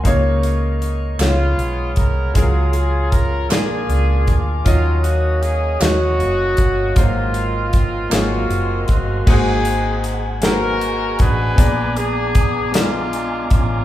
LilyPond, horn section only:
\new Staff \with { instrumentName = "Horn section" } { \time 6/8 \key aes \mixolydian \tempo 4. = 52 << { r4. f'4 bes'8 | aes'8 aes'8 bes'8 aes'4 r8 | f'8 ges'8 aes'8 ges'4. | f'4. ges'4 ges'8 |
aes'4 r8 bes'4 ces''8~ | ces''8 aes'4 f'4 f'8 | } \\ { r4. <aes ces'>4. | f'4. <d' f'>4. | <bes des'>4. <bes des'>4. | <bes c'>4. <bes c'>4. |
<c' ees'>4. <ees' ges'>4 <d' aes'>8~ | <d' aes'>8 <ces' d'>4 <aes d'>4 des'8 | } >> }